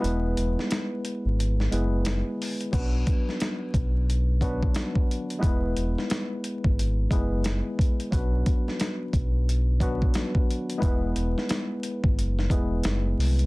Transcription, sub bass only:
X:1
M:4/4
L:1/16
Q:"Swing 16ths" 1/4=89
K:Bdor
V:1 name="Sub bass" clef=bass
E,,,2 E,,, z4 G,,,3 F,,,3 z3 | B,,,2 z4 B,,,6 z4 | E,,,2 E,,, z4 G,,,3 F,,,3 z3 | B,,,2 z4 B,,,6 z4 |
E,,,2 E,,, z4 G,,, F,,,2 E,,,2 F,,,2 =C,,2 |]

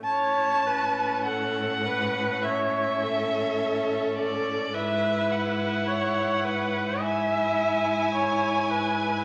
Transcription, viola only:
X:1
M:4/4
L:1/8
Q:1/4=52
K:A
V:1 name="Viola"
c B A B c A3 | B2 c B e2 c B |]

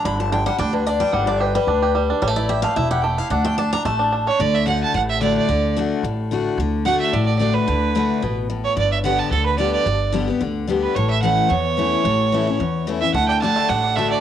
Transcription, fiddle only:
X:1
M:4/4
L:1/8
Q:1/4=220
K:D
V:1 name="Fiddle"
z8 | z8 | z8 | z6 z c |
d e f a f e d d- | d2 z6 | z2 f e d d d B- | B4- B z2 c |
d e f a A B d d- | d2 z4 z B | c e f2 c4- | c6 z e |
f g a2 f2 e d |]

